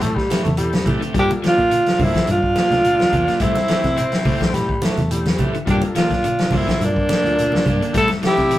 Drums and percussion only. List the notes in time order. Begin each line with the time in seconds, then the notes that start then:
0.01 closed hi-hat, high conga, shekere
0.16 kick, snare
0.30 snare, closed hi-hat, high conga, shekere
0.45 closed hi-hat, low conga
0.57 closed hi-hat, shekere
0.73 snare, closed hi-hat, high conga
0.86 kick, closed hi-hat, low conga, shekere
1.02 closed hi-hat
1.15 kick, closed hi-hat, shekere
1.30 closed hi-hat, high conga
1.43 snare, closed hi-hat
1.58 kick, closed hi-hat, high conga
1.71 closed hi-hat, shekere
1.86 snare, closed hi-hat
1.99 kick, open hi-hat, high conga, low conga, shekere
2.14 kick, snare, closed hi-hat
2.27 closed hi-hat, shekere
2.43 kick
2.56 snare, closed hi-hat, high conga, shekere
2.71 snare, closed hi-hat, low conga
2.84 closed hi-hat, shekere
3.00 snare, high conga
3.12 kick, closed hi-hat, high conga, low conga, shekere
3.28 snare, closed hi-hat
3.40 kick, snare, closed hi-hat, shekere
3.55 snare, closed hi-hat, high conga
3.68 snare, closed hi-hat
3.83 kick, snare, closed hi-hat, high conga
3.97 closed hi-hat, shekere
4.12 snare, closed hi-hat
4.25 kick, open hi-hat, high conga, low conga, shekere
4.41 kick, snare, closed hi-hat
4.54 snare, closed hi-hat, high conga, shekere
4.69 kick
4.82 snare, closed hi-hat, high conga, shekere
4.98 closed hi-hat, low conga
5.11 closed hi-hat, shekere
5.25 snare, closed hi-hat, high conga
5.38 kick, closed hi-hat, low conga, shekere
5.54 closed hi-hat
5.67 kick, closed hi-hat, shekere
5.82 closed hi-hat, high conga
5.95 snare, closed hi-hat, shekere
6.10 kick, snare, closed hi-hat, high conga
6.24 closed hi-hat, shekere
6.39 snare, closed hi-hat
6.51 kick, open hi-hat, high conga, low conga, shekere
6.68 kick, snare, closed hi-hat
6.81 closed hi-hat, shekere
6.96 kick
7.09 snare, closed hi-hat, high conga
7.26 closed hi-hat
7.39 closed hi-hat, shekere
7.52 snare, high conga
7.66 kick, closed hi-hat, high conga, low conga, shekere
7.82 closed hi-hat
7.94 kick, snare, closed hi-hat, shekere
8.08 snare, closed hi-hat, high conga
8.23 snare, closed hi-hat
8.37 kick, snare, closed hi-hat, high conga
8.51 closed hi-hat, shekere